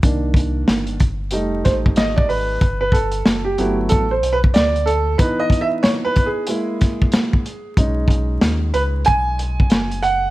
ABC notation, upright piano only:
X:1
M:4/4
L:1/16
Q:"Swing 16ths" 1/4=93
K:Gmix
V:1 name="Upright piano"
z8 z2 c2 _e d B2- | B B A3 G2 z (3A2 c2 B2 d2 A2 | (3B2 ^d2 e2 (3^c2 B2 ^G2- G8- | ^G z4 z B2 ^g6 ^f2 |]
V:2 name="Upright piano"
[_E,_B,D]6 z2 [G,A,_E]8 | z6 [^F,A,B,E]2 z8 | [E,B,^D]8 [^G,^A,E]6 z2 | [^G,^C^D]16 |]